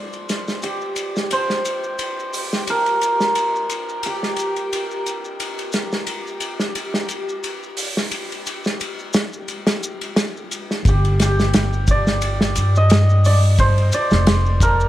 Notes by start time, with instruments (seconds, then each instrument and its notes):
Already playing: synth texture G4, hammered dulcimer C5 D5
0.13 ride, maracas
0.29 snare, ride, maracas
0.47 snare, maracas
0.62 hammered dulcimer G4, ride, maracas
0.81 maracas
0.96 ride, maracas
1.16 snare, maracas
1.31 hammered dulcimer C5, ride, maracas
1.50 snare, maracas
1.65 ride, maracas
1.84 maracas
1.99 ride, maracas
2.19 maracas
2.34 open hi-hat, maracas
2.52 snare, maracas
2.67 hammered dulcimer A#4, ride, maracas
2.86 ride, maracas
3.01 ride, maracas
3.20 snare, maracas
3.35 ride, maracas
3.56 maracas
3.69 ride, maracas
3.89 maracas
4.03 hammered dulcimer G4, ride, maracas
4.23 snare, maracas
4.36 ride, maracas
4.56 ride, maracas
4.73 ride, maracas
4.91 maracas
5.06 ride, maracas
5.25 maracas
5.40 ride, maracas
5.59 ride, maracas
5.72 snare, ride, maracas
5.92 snare, maracas
6.07 ride, maracas
6.27 maracas
6.40 ride, maracas
6.59 snare, maracas
6.75 ride, maracas
6.94 snare, maracas
7.09 ride, maracas
7.29 maracas
7.43 ride, maracas
7.63 maracas
7.77 open hi-hat, maracas
7.97 snare, maracas
8.11 ride, maracas
8.31 ride, maracas
8.46 ride, maracas
8.64 snare, maracas
8.80 ride, maracas
8.99 maracas
9.13 snare, ride, maracas
9.33 maracas
9.48 ride, maracas
9.67 snare, ride, maracas
9.83 maracas
10.01 ride, maracas
10.16 snare, ride, maracas
10.37 maracas
10.51 ride, maracas
10.71 snare, maracas
10.85 upright bass G1, hammered dulcimer G4, kick, ride, maracas
11.05 ride, maracas
11.20 hammered dulcimer G4, snare, ride, maracas
11.39 snare, maracas
11.53 snare, ride, maracas
11.73 maracas
11.87 hammered dulcimer D5, kick, ride, maracas
12.07 snare, maracas
12.21 ride, maracas
12.41 snare, maracas
12.55 upright bass G2, ride, maracas
12.76 hammered dulcimer D#5, maracas
12.90 snare, ride, maracas
13.09 maracas
13.25 hammered dulcimer D5, open hi-hat, maracas
13.44 maracas
13.58 hammered dulcimer C5, kick, ride, maracas
13.78 ride, maracas
13.92 hammered dulcimer D5, ride, maracas
14.10 upright bass F1, snare, maracas
14.27 snare, ride, maracas
14.46 maracas
14.60 hammered dulcimer A#4, kick, ride, maracas
14.80 maracas